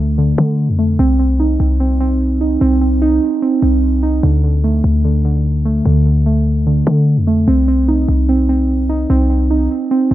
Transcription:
0.00 0.34 D2 loud
0.00 0.17 D3 medium
0.00 0.78 A3 medium
0.18 0.37 D3 medium
0.38 0.99 D3 medium
0.38 0.70 D3 loud
0.69 0.98 F2 loud
0.79 0.99 A3 medium
0.99 1.58 C2 loud
0.99 1.18 C4 medium
1.19 1.79 C4 medium
1.40 2.40 D#4 medium
1.60 2.57 C2 loud
1.80 1.99 C4 medium
2.00 2.60 C4 medium
2.41 3.01 D#4 medium
2.61 3.20 C2 loud
2.61 2.80 C4 medium
2.81 3.41 C4 medium
3.02 4.02 D#4 medium
3.42 3.61 C4 medium
3.62 4.21 C2 loud
3.62 4.23 C4 medium
4.03 4.23 D#4 medium
4.23 4.82 D2 loud
4.23 4.43 D3 medium
4.44 5.03 D3 medium
4.64 5.64 A3 medium
4.84 5.82 D2 loud
5.05 5.24 D3 medium
5.25 5.84 D3 medium
5.65 6.25 A3 medium
5.86 6.83 D2 loud
5.86 6.05 D3 medium
6.06 6.65 D3 medium
6.26 7.26 A3 medium
6.67 6.85 D3 medium
6.87 7.48 D3 medium
6.87 7.19 D3 loud
7.17 7.46 F2 loud
7.27 7.48 A3 medium
7.48 8.06 C2 loud
7.48 7.67 C4 medium
7.68 8.28 C4 medium
7.88 8.88 D#4 medium
8.09 9.06 C2 loud
8.29 8.48 C4 medium
8.49 9.09 C4 medium
8.89 9.49 D#4 medium
9.10 9.68 C2 loud
9.10 9.29 C4 loud
9.30 9.90 C4 medium
9.51 10.14 D#4 medium
9.91 10.10 C4 medium
10.11 10.14 C2 loud
10.11 10.14 C4 medium

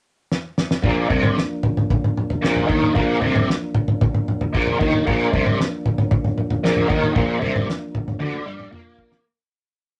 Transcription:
0.32 snare medium
0.58 snare medium
0.71 snare medium
0.82 1.09 A#1 medium
0.82 1.09 A#2 medium
0.82 9.19 F3 medium
0.82 9.19 A#3 medium
0.82 9.20 D4 medium
0.82 9.19 F4 medium
0.82 9.20 A#4 medium
0.82 kick loud
0.82 floor tom medium
1.09 1.35 C2 medium
1.09 1.36 C3 loud
1.09 kick loud
1.09 floor tom medium
1.23 floor tom medium
1.38 snare medium
1.63 floor tom medium
1.63 mid tom medium
1.77 floor tom medium
1.90 kick loud
1.90 floor tom medium
1.90 mid tom medium
2.04 floor tom medium
2.17 mid tom medium
2.30 floor tom medium
2.42 2.68 A#1 medium
2.42 2.68 A#2 loud
2.42 snare medium
2.56 floor tom medium
2.68 2.95 D#2 loud
2.68 2.94 D#3 loud
2.68 kick loud
2.82 mid tom medium
2.95 3.21 A#1 medium
2.95 3.21 A#2 loud
2.95 kick loud
2.95 floor tom medium
3.21 3.48 C2 medium
3.21 3.48 C3 loud
3.21 floor tom medium
3.36 floor tom medium
3.50 snare medium
3.75 floor tom medium
3.75 mid tom medium
3.88 floor tom medium
4.01 kick loud
4.01 floor tom medium
4.01 mid tom medium
4.15 floor tom medium
4.28 mid tom medium
4.41 floor tom medium
4.54 4.79 A#1 medium
4.54 4.79 A#2 loud
4.54 kick loud
4.67 floor tom medium
4.80 5.05 D#2 loud
4.80 5.06 D#3 medium
4.80 kick loud
4.94 mid tom medium
5.07 5.32 A#1 medium
5.07 5.32 A#2 loud
5.07 kick loud
5.07 floor tom medium
5.33 5.58 C2 medium
5.33 5.59 C3 loud
5.33 kick loud
5.33 floor tom medium
5.46 floor tom medium
5.61 snare medium
5.86 floor tom medium
5.86 mid tom medium
5.98 floor tom medium
6.11 kick loud
6.11 floor tom medium
6.11 mid tom medium
6.25 floor tom medium
6.38 mid tom medium
6.50 floor tom medium
6.63 6.88 A#1 loud
6.63 6.89 A#2 loud
6.63 snare medium
6.76 floor tom medium
6.89 7.14 D#2 loud
6.89 7.14 D#3 medium
6.89 kick loud
7.03 mid tom medium
7.15 7.40 A#1 medium
7.15 7.40 A#2 loud
7.15 kick loud
7.15 floor tom medium
7.41 7.66 C2 medium
7.41 7.67 C3 loud
7.41 floor tom medium
7.56 floor tom medium
7.70 snare medium
7.95 floor tom medium
7.95 mid tom medium
8.08 floor tom medium
8.20 8.44 D2 medium
8.20 8.45 D3 loud
8.20 high tom medium
8.34 high tom medium
8.45 8.70 G2 medium
8.45 8.71 G3 medium
8.60 mid tom medium
8.71 9.20 A#2 medium
8.71 9.23 A#3 loud
8.71 mid tom medium
8.98 kick medium
9.12 snare medium

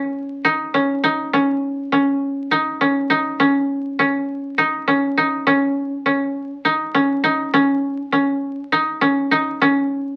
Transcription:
0.00 0.74 C#4 medium
0.00 0.44 D#4 medium
0.45 1.03 D#4 medium
0.74 1.33 C#4 medium
1.04 2.51 D#4 medium
1.33 1.92 C#4 medium
1.92 2.81 C#4 medium
2.51 3.10 D#4 medium
2.81 3.39 C#4 medium
3.10 4.58 D#4 medium
3.40 3.99 C#4 medium
3.99 4.87 C#4 medium
4.58 5.17 D#4 medium
4.88 5.46 C#4 medium
5.17 6.64 D#4 medium
5.47 6.05 C#4 medium
6.06 6.94 C#4 medium
6.65 7.23 D#4 medium
6.94 7.53 C#4 medium
7.24 8.72 D#4 medium
7.54 8.12 C#4 medium
8.12 9.01 C#4 medium
8.72 9.31 D#4 medium
9.01 9.61 C#4 medium
9.31 10.16 D#4 medium
9.61 10.16 C#4 medium

